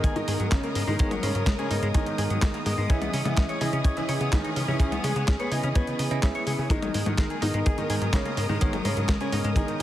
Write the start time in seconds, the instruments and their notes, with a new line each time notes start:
Already playing: string section G#3 A#4 D#6, tine electric piano B3 G#4 A#4 D#5
0.04 analog synth bass G#1, clean electric guitar G#4, kick, closed hi-hat
0.16 clean electric guitar G#2, grand piano D#3 D#4, closed hi-hat
0.28 analog synth bass G#2, clean electric guitar G#4, open hi-hat
0.40 analog synth bass G#2, clean electric guitar F#3, closed hi-hat
0.51 analog synth bass G#1, grand piano C#3 C#4, clean electric guitar G#3, kick, snare, clap, closed hi-hat
0.64 clean electric guitar A#3, closed hi-hat
0.75 analog synth bass G#2, clean electric guitar G#3, open hi-hat
0.87 analog synth bass G#2, grand piano D#3 D#4, clean electric guitar G#3
0.99 analog synth bass G#1, clean electric guitar G#3, tine electric piano B3 G#4 A#4 C#5, kick, closed hi-hat
1.11 clean electric guitar F#3, closed hi-hat, high tom
1.23 analog synth bass G#2, grand piano C#3 C#4, clean electric guitar G#3, open hi-hat
1.35 analog synth bass G#2, clean electric guitar F#3, closed hi-hat
1.46 analog synth bass G#1, clean electric guitar G#3, kick, snare, clap, closed hi-hat
1.59 grand piano C#3 C#4, clean electric guitar G#4, closed hi-hat
1.71 analog synth bass G#2, tine electric piano B3 G#4 A#4 D#5, clean electric guitar D#4, open hi-hat
1.83 analog synth bass G#2, clean electric guitar G#3, closed hi-hat
1.94 analog synth bass G#1, grand piano D#3 D#4, clean electric guitar G#4, kick, closed hi-hat
2.06 clean electric guitar G#2, closed hi-hat
2.18 analog synth bass G#2, clean electric guitar G#4, open hi-hat
2.30 analog synth bass G#2, clean electric guitar F#3, closed hi-hat
2.42 analog synth bass G#1, clean electric guitar G#3, kick, snare, clap, closed hi-hat
2.54 clean electric guitar A#3, closed hi-hat
2.66 analog synth bass G#2, clean electric guitar G#3, tine electric piano B3 G#4 A#4 D#5, open hi-hat
2.78 analog synth bass G#2, clean electric guitar G#3
2.90 analog synth bass C#2, grand piano E3 E4, string section E3 C#4 G#4, clean electric guitar C#4, tine electric piano C#4 E4 G#4 D#5, kick, closed hi-hat
3.02 clean electric guitar B3, closed hi-hat, high tom
3.13 analog synth bass C#3, clean electric guitar C#4, open hi-hat
3.25 analog synth bass C#3, grand piano E3 E4, clean electric guitar B3, closed hi-hat, high tom
3.37 analog synth bass C#2, clean electric guitar C#4, kick, snare, clap, closed hi-hat
3.49 clean electric guitar C#5, closed hi-hat
3.61 analog synth bass C#3, grand piano E3 E4, tine electric piano C#4 E4 G#4 D#5, clean electric guitar G#4, open hi-hat
3.73 analog synth bass C#3, clean electric guitar C#4, closed hi-hat
3.84 analog synth bass C#2, clean electric guitar C#5, kick, closed hi-hat
3.97 clean electric guitar C#3, grand piano E3 E4, closed hi-hat
4.09 analog synth bass C#3, clean electric guitar C#5, open hi-hat
4.21 analog synth bass C#3, clean electric guitar B3, closed hi-hat
4.32 analog synth bass C#2, grand piano D#3 D#4, clean electric guitar C#4, kick, snare, clap, closed hi-hat
4.44 clean electric guitar D#4, closed hi-hat
4.56 analog synth bass C#3, clean electric guitar C#4, open hi-hat
4.68 analog synth bass C#3, grand piano E3 E4, clean electric guitar C#4
4.80 analog synth bass C#2, clean electric guitar C#4, tine electric piano C#4 E4 G#4 C#5, kick, closed hi-hat
4.92 clean electric guitar B3, closed hi-hat, high tom
5.04 analog synth bass C#3, grand piano G#3 G#4, clean electric guitar C#4, open hi-hat
5.16 analog synth bass C#3, clean electric guitar B3, closed hi-hat
5.28 analog synth bass C#2, clean electric guitar C#4, kick, snare, clap, closed hi-hat
5.40 grand piano B3 B4, clean electric guitar C#5, closed hi-hat
5.52 analog synth bass C#3, tine electric piano C#4 E4 G#4 D#5, clean electric guitar G#4, open hi-hat
5.64 analog synth bass C#3, clean electric guitar C#4, closed hi-hat
5.75 analog synth bass C#2, grand piano B3 B4, clean electric guitar C#5, kick, closed hi-hat
5.87 clean electric guitar C#3, closed hi-hat
5.99 analog synth bass C#3, clean electric guitar G#4, open hi-hat
6.11 analog synth bass C#3, tine electric piano C#4 E4 G#4 D#5, clean electric guitar E4, closed hi-hat
6.23 analog synth bass C#2, tine electric piano C#4 E4 G#4 E5, clean electric guitar C#4, kick, snare, clap, closed hi-hat
6.35 clean electric guitar C#5, closed hi-hat
6.47 analog synth bass C#3, clean electric guitar G#4, open hi-hat
6.59 clean electric guitar C#3, analog synth bass C#3
6.70 analog synth bass G#1, grand piano D#3 D#4, string section G#3 A#4 D#6, clean electric guitar G#3, tine electric piano B3 G#4 A#4 D#5, kick, closed hi-hat
6.83 clean electric guitar F#3, closed hi-hat, high tom
6.94 analog synth bass G#2, clean electric guitar G#3, open hi-hat
7.06 analog synth bass G#2, grand piano D#3 D#4, clean electric guitar F#3, closed hi-hat, high tom
7.18 analog synth bass G#1, clean electric guitar G#3, kick, snare, clap, closed hi-hat
7.30 clean electric guitar G#4, closed hi-hat
7.42 analog synth bass G#2, grand piano D#3 D#4, tine electric piano B3 G#4 A#4 D#5, clean electric guitar D#4, open hi-hat
7.54 analog synth bass G#2, clean electric guitar G#3, closed hi-hat
7.66 analog synth bass G#1, clean electric guitar G#4, kick, closed hi-hat
7.78 clean electric guitar G#2, grand piano D#3 D#4, closed hi-hat
7.90 analog synth bass G#2, clean electric guitar G#4, open hi-hat
8.01 analog synth bass G#2, clean electric guitar F#3, closed hi-hat
8.13 analog synth bass G#1, grand piano C#3 C#4, clean electric guitar G#3, kick, snare, clap, closed hi-hat
8.25 clean electric guitar A#3, closed hi-hat
8.37 analog synth bass G#2, clean electric guitar G#3, open hi-hat
8.49 analog synth bass G#2, grand piano D#3 D#4, clean electric guitar G#3
8.61 analog synth bass G#1, clean electric guitar G#3, tine electric piano B3 G#4 A#4 C#5, kick, closed hi-hat
8.73 clean electric guitar F#3, closed hi-hat, high tom
8.85 analog synth bass G#2, grand piano C#3 C#4, clean electric guitar G#3, open hi-hat
8.97 analog synth bass G#2, clean electric guitar F#3, closed hi-hat
9.09 analog synth bass G#1, clean electric guitar G#3, kick, snare, clap, closed hi-hat
9.21 grand piano C#3 C#4, clean electric guitar G#4, closed hi-hat
9.32 analog synth bass G#2, tine electric piano B3 G#4 A#4 D#5, clean electric guitar D#4, open hi-hat
9.44 analog synth bass G#2, clean electric guitar G#3, closed hi-hat
9.56 analog synth bass G#1, grand piano D#3 D#4, clean electric guitar G#4, kick, closed hi-hat
9.68 clean electric guitar G#2, closed hi-hat